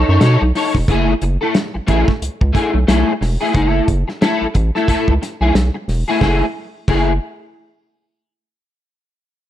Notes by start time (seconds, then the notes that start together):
0.09 F#2 D#4 A4 C#5
0.21 B2 D#4 A4 C#5, snare, closed hi-hat
0.42 B1, muted clean electric guitar stroke
0.55 D#4 A4 C#5, snare, open hi-hat
0.75 E1, muted clean electric guitar stroke, kick, snare
0.88 F#1 A3 E4 G#4, kick, closed hi-hat
1.22 F#1, muted clean electric guitar stroke, closed hi-hat
1.41 A3 E4 A4
1.54 snare, closed hi-hat
1.74 A1, muted clean electric guitar stroke
1.87 A1 A3 E4 G#4, kick, closed hi-hat
2.07 muted clean electric guitar stroke, kick, snare
2.21 C#2, closed hi-hat
2.41 C#2, muted clean electric guitar stroke, kick
2.53 A3 E4 G#4, kick, snare, closed hi-hat
2.74 B1, muted clean electric guitar stroke
2.87 B1 A3 E4 G#4, snare, closed hi-hat
3.21 E1, muted clean electric guitar stroke, snare, open hi-hat
3.41 A3 E4 G#4
3.53 F#1 G#3 D#4 G#4, kick, closed hi-hat
3.66 A3 E4 A4
3.88 F#1, kick, closed hi-hat
4.08 muted clean electric guitar stroke, snare
4.21 A3 E4 A4, snare, closed hi-hat
4.41 A1
4.54 A1, muted clean electric guitar stroke, kick, closed hi-hat
4.75 A3 E4 A4, snare
4.88 C#2 A3 E4 A4, kick, closed hi-hat
5.08 C#2, kick
5.22 muted clean electric guitar stroke, snare, closed hi-hat
5.41 B1 A3 E4 G#4
5.54 B1, muted clean electric guitar stroke, snare, closed hi-hat
5.74 muted clean electric guitar stroke
5.88 E1, snare, open hi-hat
6.08 A3 E4 G#4
6.21 F#1 A3 E4 G#4, kick, snare
6.88 F#1 A3 E4 G#4, kick, crash